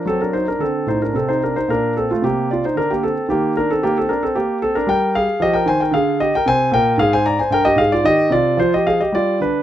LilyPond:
<<
  \new Staff \with { instrumentName = "Grand piano" } { \time 3/4 \key ees \lydian \tempo 4 = 112 <c' a'>16 <d' bes'>16 <ees' c''>16 <d' bes'>16 <c' a'>8 <ees' c''>16 <d' bes'>16 <c' a'>16 <ees' c''>16 <d' bes'>16 <ees' c''>16 | <d' bes'>8 <c' a'>16 <a f'>16 <bes g'>8 <f' d''>16 <ees' c''>16 <d' bes'>16 <bes g'>16 <c' a'>8 | <bes g'>8 <d' bes'>16 <c' a'>16 <bes g'>16 <c' a'>16 <d' bes'>16 <c' a'>16 <bes g'>8 <c' a'>16 <d' bes'>16 | \key f \dorian <bes' g''>8 <aes' f''>8 <g' ees''>16 <bes' g''>16 <c'' aes''>16 <bes' g''>16 <aes' f''>8 <g' ees''>16 <bes' g''>16 |
<c'' aes''>8 <bes' g''>8 <aes' f''>16 <c'' aes''>16 <d'' bes''>16 <c'' aes''>16 <bes' g''>16 <g' ees''>16 <aes' f''>16 <f' d''>16 | <g' ees''>8 <f' d''>8 <f' c''>16 <g' ees''>16 <aes' f''>16 <g' ees''>16 <f' d''>8 <d' b'>8 | }
  \new Staff \with { instrumentName = "Grand piano" } { \clef bass \time 3/4 \key ees \lydian fis4 d8 a,8 c4 | bes,4 c4 d4 | ees2 r4 | \key f \dorian g4 f8 ees8 d4 |
c8 bes,8 aes,4 g,8 aes,8 | ees8 c8 f4 g8 d8 | }
>>